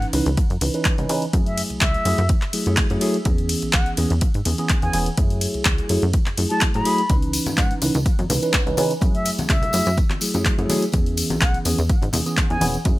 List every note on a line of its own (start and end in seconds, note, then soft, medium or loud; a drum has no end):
0.00 0.10 E3 medium
0.00 0.11 C#4 medium
0.00 0.11 D#4 medium
0.00 0.11 B4 medium
0.00 closed hi-hat soft
0.13 0.22 C#2 loud
0.13 0.28 E3 medium
0.13 0.28 C#4 medium
0.13 0.28 D#4 medium
0.13 0.28 B4 loud
0.13 open hi-hat loud
0.13 ride medium
0.26 0.37 C#2 loud
0.26 closed hi-hat soft
0.37 kick loud
0.37 closed hi-hat medium
0.37 ride medium
0.50 0.57 F#2 medium
0.50 closed hi-hat soft
0.61 0.70 C#2 loud
0.61 0.71 E3 medium
0.61 0.71 C#4 medium
0.61 0.71 D#4 medium
0.61 0.72 B4 medium
0.61 open hi-hat loud
0.61 ride medium
0.74 0.94 E3 medium
0.74 0.94 C#4 medium
0.74 0.95 D#4 medium
0.74 0.95 B4 medium
0.74 closed hi-hat soft
0.85 kick loud
0.85 clap loud
0.85 closed hi-hat medium
0.85 ride medium
0.98 1.05 C#2 loud
0.98 1.08 E3 medium
0.98 1.08 C#4 medium
0.98 1.08 D#4 medium
0.98 1.08 B4 loud
0.98 closed hi-hat soft
1.09 1.25 C#3 medium
1.09 1.24 E3 loud
1.09 1.24 C#4 medium
1.09 1.24 D#4 loud
1.09 1.24 B4 loud
1.09 open hi-hat loud
1.09 ride medium
1.22 closed hi-hat soft
1.33 1.63 F#2 loud
1.33 2.03 F#3 medium
1.33 2.03 A3 medium
1.33 2.03 E4 medium
1.33 2.03 G#4 medium
1.33 kick loud
1.33 closed hi-hat loud
1.33 ride medium
1.46 1.62 E5 medium
1.46 closed hi-hat soft
1.58 open hi-hat loud
1.58 ride medium
1.70 1.79 C#2 soft
1.70 closed hi-hat soft
1.81 1.97 C#2 medium
1.81 2.30 E5 loud
1.81 kick loud
1.81 clap loud
1.81 closed hi-hat medium
1.81 ride medium
1.94 closed hi-hat soft
2.05 2.14 F#2 loud
2.05 2.20 F#3 medium
2.05 2.20 A3 medium
2.05 2.20 E4 medium
2.05 2.20 G#4 loud
2.05 open hi-hat loud
2.05 ride medium
2.18 2.33 F#2 loud
2.18 closed hi-hat soft
2.29 kick loud
2.29 closed hi-hat medium
2.29 ride medium
2.42 clap soft
2.42 closed hi-hat soft
2.53 2.63 F#3 medium
2.53 2.63 A3 medium
2.53 2.63 E4 medium
2.53 2.63 G#4 medium
2.53 open hi-hat loud
2.53 ride medium
2.66 2.81 F#2 medium
2.66 2.86 F#3 medium
2.66 2.86 A3 medium
2.66 2.87 E4 medium
2.66 2.87 G#4 loud
2.66 closed hi-hat soft
2.77 kick loud
2.77 clap loud
2.77 closed hi-hat loud
2.77 ride medium
2.90 2.98 F#2 loud
2.90 3.00 F#3 loud
2.90 3.00 A3 medium
2.90 3.00 E4 medium
2.90 3.00 G#4 loud
2.90 closed hi-hat soft
3.01 3.16 F#3 loud
3.01 3.16 A3 medium
3.01 3.16 E4 medium
3.01 3.16 G#4 loud
3.01 open hi-hat loud
3.01 ride medium
3.14 closed hi-hat soft
3.25 3.55 E2 loud
3.25 3.95 E3 medium
3.25 3.95 B3 medium
3.25 3.95 C#4 medium
3.25 3.95 G#4 loud
3.25 kick loud
3.25 closed hi-hat medium
3.25 ride medium
3.38 closed hi-hat soft
3.49 open hi-hat loud
3.49 ride medium
3.62 3.72 B1 soft
3.62 closed hi-hat soft
3.73 3.89 B1 medium
3.73 3.90 F#5 medium
3.73 kick loud
3.73 clap loud
3.73 closed hi-hat loud
3.73 ride medium
3.86 closed hi-hat soft
3.97 4.06 E2 loud
3.97 4.12 E3 medium
3.97 4.12 B3 medium
3.97 4.12 C#4 medium
3.97 4.12 G#4 loud
3.97 open hi-hat loud
3.97 ride medium
4.10 4.21 E2 loud
4.10 closed hi-hat soft
4.21 4.32 G#2 soft
4.21 kick loud
4.21 closed hi-hat loud
4.21 ride medium
4.34 4.42 G#2 medium
4.34 closed hi-hat soft
4.45 4.54 E2 loud
4.45 4.55 E3 medium
4.45 4.55 B3 medium
4.45 4.55 C#4 medium
4.45 4.56 G#4 medium
4.45 open hi-hat loud
4.45 ride medium
4.58 4.78 E3 medium
4.58 4.79 B3 medium
4.58 4.79 C#4 medium
4.58 4.79 G#4 loud
4.58 closed hi-hat soft
4.69 kick loud
4.69 clap loud
4.69 closed hi-hat loud
4.69 ride medium
4.82 4.90 E2 loud
4.82 4.92 E3 medium
4.82 4.92 B3 medium
4.82 4.92 C#4 medium
4.82 4.92 G#4 loud
4.82 4.98 G#5 medium
4.82 closed hi-hat soft
4.93 5.10 E1 medium
4.93 5.08 E3 loud
4.93 5.08 B3 medium
4.93 5.08 C#4 medium
4.93 5.08 G#4 loud
4.93 open hi-hat loud
4.93 ride medium
5.06 closed hi-hat soft
5.17 5.47 F#2 loud
5.17 5.87 F#3 medium
5.17 5.87 A3 medium
5.17 5.87 E4 medium
5.17 5.88 G#4 medium
5.17 kick loud
5.17 closed hi-hat loud
5.17 ride medium
5.30 closed hi-hat soft
5.41 open hi-hat loud
5.41 ride medium
5.54 5.64 C#2 soft
5.54 closed hi-hat soft
5.65 5.81 C#2 medium
5.65 kick loud
5.65 clap loud
5.65 closed hi-hat loud
5.65 ride medium
5.78 closed hi-hat soft
5.89 5.98 F#2 loud
5.89 6.04 F#3 medium
5.89 6.04 A3 medium
5.89 6.04 E4 medium
5.89 6.04 G#4 loud
5.89 open hi-hat loud
5.89 ride medium
6.02 6.17 F#2 loud
6.02 closed hi-hat soft
6.13 kick loud
6.13 closed hi-hat loud
6.13 ride medium
6.26 6.36 F#2 soft
6.26 clap soft
6.26 closed hi-hat soft
6.38 6.46 F#2 loud
6.38 6.47 F#3 medium
6.38 6.48 A3 medium
6.38 6.48 E4 medium
6.38 6.48 G#4 medium
6.38 open hi-hat loud
6.38 ride medium
6.50 6.71 F#3 medium
6.50 6.71 A3 medium
6.50 6.71 E4 medium
6.50 6.71 G#4 loud
6.50 6.66 A5 medium
6.50 closed hi-hat soft
6.61 kick loud
6.61 clap loud
6.61 closed hi-hat loud
6.61 ride medium
6.74 6.82 A2 medium
6.74 6.84 F#3 medium
6.74 6.84 A3 medium
6.74 6.84 E4 medium
6.74 6.84 G#4 loud
6.74 7.15 B5 medium
6.74 closed hi-hat soft
6.85 7.00 F#3 loud
6.85 7.00 A3 medium
6.85 7.00 E4 medium
6.85 7.00 G#4 loud
6.85 open hi-hat loud
6.85 ride medium
6.98 closed hi-hat soft
7.09 7.39 C#2 loud
7.09 7.79 E3 medium
7.09 7.79 C#4 medium
7.09 7.79 D#4 medium
7.09 7.80 B4 loud
7.09 kick loud
7.09 closed hi-hat loud
7.09 ride medium
7.09 tambourine soft
7.22 closed hi-hat soft
7.33 open hi-hat loud
7.33 ride medium
7.33 tambourine loud
7.46 7.56 G#2 soft
7.46 closed hi-hat soft
7.46 tambourine medium
7.46 high conga medium
7.57 7.73 G#2 medium
7.57 7.74 F#5 medium
7.57 kick loud
7.57 clap loud
7.57 closed hi-hat loud
7.57 ride medium
7.57 tambourine soft
7.71 closed hi-hat soft
7.81 7.90 C#2 loud
7.81 7.96 E3 medium
7.81 7.96 C#4 medium
7.81 7.96 D#4 medium
7.81 7.96 B4 loud
7.81 open hi-hat loud
7.81 ride medium
7.81 tambourine medium
7.94 8.05 C#2 loud
7.94 closed hi-hat soft
7.94 tambourine medium
8.06 8.16 F#2 soft
8.06 kick loud
8.06 closed hi-hat loud
8.06 ride medium
8.06 tambourine soft
8.19 8.26 F#2 loud
8.19 closed hi-hat soft
8.19 high conga medium
8.29 8.38 C#2 loud
8.29 8.39 E3 medium
8.29 8.39 C#4 medium
8.29 8.40 D#4 medium
8.29 8.40 B4 medium
8.29 open hi-hat loud
8.29 ride medium
8.29 tambourine loud
8.29 low conga medium
8.42 8.62 E3 medium
8.42 8.63 C#4 medium
8.42 8.63 D#4 medium
8.42 8.63 B4 loud
8.42 closed hi-hat soft
8.42 tambourine medium
8.53 kick loud
8.53 clap loud
8.53 closed hi-hat loud
8.53 ride medium
8.53 tambourine soft
8.66 8.73 C#2 loud
8.66 8.76 E3 medium
8.66 8.76 C#4 medium
8.66 8.76 D#4 medium
8.66 8.76 B4 loud
8.66 closed hi-hat soft
8.77 8.93 C#3 medium
8.77 8.92 E3 loud
8.77 8.92 C#4 medium
8.77 8.92 D#4 medium
8.77 8.92 B4 loud
8.77 open hi-hat loud
8.77 ride medium
8.77 tambourine medium
8.77 high conga medium
8.90 closed hi-hat soft
8.90 tambourine soft
9.01 9.31 F#2 medium
9.01 9.71 F#3 medium
9.01 9.71 A3 medium
9.01 9.71 E4 medium
9.01 9.71 G#4 medium
9.01 kick loud
9.01 closed hi-hat medium
9.01 ride medium
9.01 tambourine soft
9.14 9.30 E5 medium
9.14 closed hi-hat soft
9.25 open hi-hat loud
9.25 ride medium
9.25 tambourine medium
9.38 9.47 C#2 soft
9.38 closed hi-hat soft
9.38 tambourine medium
9.38 high conga loud
9.48 9.65 C#2 medium
9.48 9.98 E5 loud
9.48 kick loud
9.48 clap loud
9.48 closed hi-hat loud
9.48 ride medium
9.48 tambourine soft
9.62 closed hi-hat soft
9.62 low conga medium
9.73 9.82 F#2 loud
9.73 9.88 F#3 medium
9.73 9.88 A3 medium
9.73 9.88 E4 medium
9.73 9.88 G#4 loud
9.73 open hi-hat loud
9.73 ride medium
9.73 tambourine medium
9.86 10.01 F#2 loud
9.86 closed hi-hat soft
9.86 tambourine medium
9.97 kick loud
9.97 closed hi-hat medium
9.97 ride medium
9.97 tambourine soft
10.10 clap soft
10.10 closed hi-hat soft
10.10 high conga medium
10.21 10.31 F#3 medium
10.21 10.31 A3 medium
10.21 10.31 E4 medium
10.21 10.31 G#4 medium
10.21 open hi-hat loud
10.21 ride medium
10.21 tambourine loud
10.34 10.49 F#2 medium
10.34 10.54 F#3 medium
10.34 10.54 A3 medium
10.34 10.55 E4 medium
10.34 10.55 G#4 loud
10.34 closed hi-hat soft
10.34 tambourine medium
10.45 kick loud
10.45 clap loud
10.45 closed hi-hat loud
10.45 ride medium
10.58 10.66 F#2 medium
10.58 10.68 F#3 medium
10.58 10.68 A3 medium
10.58 10.68 E4 medium
10.58 10.68 G#4 loud
10.58 closed hi-hat soft
10.69 10.84 F#3 loud
10.69 10.84 A3 medium
10.69 10.84 E4 medium
10.69 10.84 G#4 loud
10.69 open hi-hat loud
10.69 ride medium
10.69 tambourine loud
10.69 high conga loud
10.82 closed hi-hat soft
10.82 tambourine medium
10.92 11.23 E2 loud
10.92 11.62 E3 medium
10.92 11.63 B3 medium
10.92 11.63 C#4 medium
10.92 11.63 G#4 medium
10.92 kick loud
10.92 closed hi-hat medium
10.92 ride medium
10.92 tambourine soft
11.06 closed hi-hat soft
11.17 open hi-hat loud
11.17 ride medium
11.17 tambourine medium
11.30 11.39 B1 soft
11.30 closed hi-hat soft
11.30 tambourine soft
11.30 high conga loud
11.41 11.57 B1 medium
11.41 11.58 F#5 medium
11.41 kick loud
11.41 clap loud
11.41 closed hi-hat medium
11.41 ride medium
11.41 tambourine soft
11.54 closed hi-hat soft
11.65 11.74 E2 loud
11.65 11.80 E3 medium
11.65 11.80 B3 medium
11.65 11.80 C#4 medium
11.65 11.80 G#4 loud
11.65 open hi-hat loud
11.65 ride medium
11.65 tambourine medium
11.78 11.89 E2 loud
11.78 closed hi-hat soft
11.78 tambourine medium
11.89 12.00 G#2 soft
11.89 kick loud
11.89 closed hi-hat medium
11.89 ride medium
11.89 tambourine soft
12.02 12.09 G#2 medium
12.02 closed hi-hat soft
12.02 high conga medium
12.13 12.22 E2 loud
12.13 12.23 E3 medium
12.13 12.23 B3 medium
12.13 12.23 C#4 medium
12.13 12.23 G#4 medium
12.13 open hi-hat loud
12.13 ride medium
12.13 tambourine medium
12.13 low conga medium
12.26 12.46 E3 medium
12.26 12.46 B3 medium
12.26 12.46 C#4 medium
12.26 12.47 G#4 loud
12.26 closed hi-hat soft
12.26 tambourine medium
12.37 kick loud
12.37 clap loud
12.37 closed hi-hat medium
12.37 ride medium
12.50 12.57 E2 loud
12.50 12.60 E3 loud
12.50 12.60 B3 medium
12.50 12.60 C#4 medium
12.50 12.60 G#4 loud
12.50 12.66 G#5 medium
12.50 closed hi-hat soft
12.61 12.77 E1 medium
12.61 12.76 E3 loud
12.61 12.76 B3 medium
12.61 12.76 C#4 medium
12.61 12.76 G#4 loud
12.61 open hi-hat loud
12.61 ride medium
12.61 tambourine medium
12.61 high conga loud
12.74 closed hi-hat soft
12.74 tambourine soft
12.85 12.99 F#2 loud
12.85 12.99 F#3 medium
12.85 12.99 A3 medium
12.85 12.99 E4 medium
12.85 12.99 G#4 medium
12.85 kick loud
12.85 closed hi-hat medium
12.85 ride medium
12.85 tambourine soft